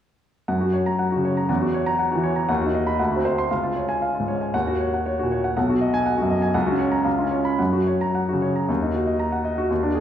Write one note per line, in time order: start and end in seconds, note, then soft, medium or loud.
0.48 1.46 F#2 soft
0.48 0.69 F#5 soft
0.61 0.81 F#4 soft
0.73 0.94 C#5 soft
0.86 1.07 A#5 medium
0.99 1.19 F#5 soft
1.12 1.32 F#4 soft
1.16 1.43 C#3 soft
1.25 1.44 C#5 soft
1.37 1.49 A#5 medium
1.49 2.46 E2 medium
1.49 1.69 F#5 medium
1.61 1.81 F#4 soft
1.74 1.94 C#5 medium
1.86 2.06 A#5 medium
1.99 2.19 F#5 soft
2.11 2.42 E3 soft
2.11 2.31 F#4 soft
2.23 2.43 C#5 medium
2.36 2.48 A#5 medium
2.49 2.98 D#2 medium
2.49 2.69 F#5 medium
2.61 2.81 F#4 medium
2.66 2.92 D#4 soft
2.74 2.94 D#5 medium
2.87 2.99 B5 medium
2.99 3.48 D2 medium
2.99 3.19 F#5 soft
3.12 3.32 F#4 soft
3.16 3.43 C4 soft
3.25 3.45 C5 soft
3.38 3.50 C6 medium
3.51 4.51 C#2 soft
3.51 3.71 F5 soft
3.64 3.84 F4 soft
3.76 3.96 C#5 soft
3.89 4.09 G#5 medium
4.02 4.22 F5 soft
4.15 4.35 F4 soft
4.20 4.47 G#2 soft
4.28 4.49 C#5 soft
4.41 4.54 G#5 soft
4.54 5.53 D#2 medium
4.54 4.75 F#5 medium
4.67 4.88 F#4 soft
4.81 5.01 C#5 soft
4.94 5.14 F#5 soft
5.06 5.26 C#5 soft
5.19 5.50 A#2 soft
5.19 5.39 F#4 soft
5.32 5.52 C#5 medium
5.44 5.55 F#5 medium
5.57 6.52 B1 medium
5.57 5.76 F#5 medium
5.69 5.89 F#4 soft
5.81 6.01 D#5 soft
5.94 6.13 G#5 medium
6.06 6.25 F#5 soft
6.18 6.37 F#4 medium
6.22 6.48 F#2 medium
6.30 6.50 D#5 medium
6.42 6.55 G#5 medium
6.54 7.03 C#2 medium
6.54 6.75 F#5 medium
6.67 6.87 F#4 medium
6.71 6.98 C#4 medium
6.79 7.00 C#5 medium
6.92 7.05 A#5 medium
7.05 7.57 C#2 medium
7.05 7.26 F5 soft
7.18 7.51 C#4 soft
7.18 7.40 F4 soft
7.31 7.53 C#5 soft
7.45 7.59 B5 medium
7.59 8.65 F#2 medium
7.59 7.81 F#5 soft
7.73 7.95 F#4 soft
7.87 8.09 C#5 soft
8.01 8.23 A#5 medium
8.15 8.37 F#5 soft
8.29 8.50 F#4 soft
8.33 8.62 C#3 soft
8.42 8.64 C#5 soft
8.56 8.69 A#5 soft
8.69 9.67 D#2 medium
8.82 9.02 D#4 soft
8.95 9.15 F#4 soft
9.07 9.27 D#5 soft
9.19 9.40 A#5 medium
9.32 9.52 F#5 soft
9.45 9.65 D#5 soft
9.58 9.70 F#4 medium
9.70 10.00 D#2 medium
9.83 10.00 D4 medium
9.95 10.00 G#4 soft